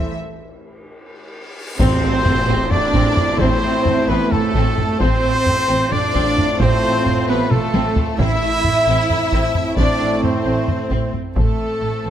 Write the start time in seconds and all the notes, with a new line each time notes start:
Already playing: E3 G3 A3 E4 A4 C5 E5
0.17 cymbal swell
1.78 A1 A2 A3 C4 E4 C5, taiko, tam-tam, sub drop
2.02 A1 A3
2.25 A1 A3, taiko low-mid
2.48 A1 C4
2.71 A1 A3 D4 D5, taiko low-mid
2.93 A1 C4, taiko
3.17 taiko low-mid
3.39 A1 C4 C5, taiko
3.63 A1 A3
3.85 A1 A3, taiko low-mid
4.08 A1 B3 C4 B4
4.31 A1 A3 A4, taiko low-mid
4.55 A1 C4, taiko
4.78 taiko low-mid
5.00 A1 A2 A3 C4 F4 C5, taiko
5.24 A1 A3
5.46 A1 A3, taiko low-mid
5.69 A1 C4
5.91 A1 A3 D4 D5, taiko low-mid
6.15 A1 C4, taiko
6.38 taiko low-mid
6.60 A1 C4 C5, taiko
6.83 A1 A3
7.06 A1 A3, taiko low-mid
7.28 A1 B3 C4 B4
7.50 A1 A3 A4, taiko mid
7.74 A1 C4, taiko high
7.96 taiko low
8.18 A1 A2 A3 C4 E4 E5, taiko
8.41 A1 A3
8.64 A1 A3, taiko low-mid
8.86 A1 C4
9.10 A1 A3, taiko low-mid
9.32 A1 C4, taiko
9.55 taiko low-mid
9.77 A1 C4 D4 D5, taiko
10.01 A1 A3
10.23 A1 A3 C4 C5, taiko low-mid
10.45 A1 C4
10.67 A1 A3, taiko low-mid
10.90 A1 C4, taiko
11.13 taiko low-mid
11.34 A1 A2 A3 C4 A4, taiko
11.58 A1 A3
11.81 A1 A3
12.04 A1 C4